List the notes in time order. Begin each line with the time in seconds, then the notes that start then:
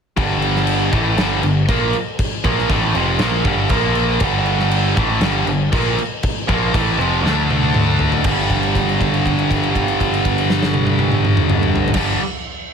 0.17 G1 G2 D3 G3, kick, crash
0.42 crash
0.55 snare
0.67 crash
0.92 A1 A2 E3 A3, kick, crash
1.17 G1 G2 D3 G3, snare, crash
1.42 G1 G2 D3, crash
1.69 A#1 A#2 F3 A#3, kick, crash
1.93 crash
2.19 kick, crash
2.44 A#1 A#2 F3 A#3, kick, crash
2.58 snare
2.69 A1 A2 E3 A3, kick, crash
2.94 F1 F2 C3 F3, crash
3.18 A#1 A#2 F3 A#3, snare, crash
3.45 G1 G2 D3 G3, kick, crash
3.69 A#1 A#2 F3 A#3, kick, crash
3.95 crash
4.20 G1 G2 D3 G3, kick, crash
4.46 crash
4.59 snare
4.71 crash
4.97 A1 A2 E3 A3, kick, crash
5.20 G1 G2 D3 G3, snare, crash
5.46 G1 G2 D3, crash
5.72 A#1 A#2 F3 A#3, kick, crash
5.98 crash
6.23 kick, crash
6.48 A#1 A#2 F3 A#3, kick, crash
6.73 A1 A2 E3 A3, kick, crash
6.98 F1 F2 C3 F3, crash
7.23 D2 D3 A3 D4, snare
7.51 high tom
7.62 high tom
7.74 mid tom
7.99 floor tom
8.12 floor tom
8.24 G1 G2 D3 G3, kick, crash
8.50 kick, crash
8.63 crash
8.75 kick, crash
8.89 crash
9.01 kick, crash
9.14 crash
9.26 kick, crash
9.39 crash
9.51 kick, crash
9.63 crash
9.75 kick, crash
9.88 crash
10.00 kick, crash
10.14 crash
10.25 kick, crash
10.38 crash
10.50 snare
10.63 snare
10.74 high tom
10.87 high tom
10.99 high tom
11.12 mid tom
11.25 mid tom
11.37 mid tom
11.50 mid tom
11.63 mid tom
11.76 floor tom
11.88 floor tom
11.94 G1 G2 D3, kick, snare, crash
11.98 G3